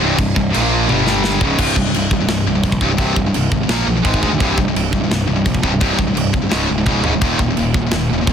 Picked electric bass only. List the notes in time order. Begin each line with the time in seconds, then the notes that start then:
0.02 C1
0.18 C1
0.36 C1
0.56 A#1
0.90 G1
1.41 C#1
1.59 C1
1.77 C1
1.94 C1
2.11 C1
2.27 C1
2.48 C1
2.63 A#1
2.81 C1
2.98 C1
3.17 C1
3.36 C1
3.52 G#1
3.69 A#1
3.87 A#1
4.05 G#1
4.23 D2
4.40 C1
4.57 C1
4.76 C1
4.93 C1
5.11 C1
5.29 C1
5.46 A#1
5.64 C1
5.82 C1
5.99 C1
6.16 C1
6.33 C1
6.53 C#1
6.71 C#1
6.87 C#1
7.07 C#1
7.21 D#1
7.39 D#1
7.59 D#1
7.74 D#1
7.93 D#1
8.11 D#1
8.27 C2